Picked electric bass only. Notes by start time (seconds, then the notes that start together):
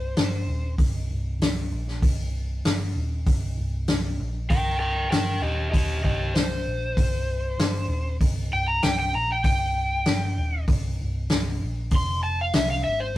Already playing: C1
0.17 G1
0.48 D#1
0.78 C1
1.11 C1
1.40 C1
1.72 A#1
2.03 C1
2.65 G1
2.96 D#1
3.27 C1
3.57 C1
3.90 C1
4.20 A#1
4.50 C1
5.12 G1
5.41 D#1
5.74 D#1
6.04 C1
6.66 A#1
6.98 C1
7.58 G1
7.88 D#1
8.21 C1
8.51 C1
8.83 C1
9.13 A#1
9.45 C1
10.07 G1
10.38 D#1
10.68 C1
11.01 C1
11.61 A#1
11.92 F1
12.55 C2
12.86 G#1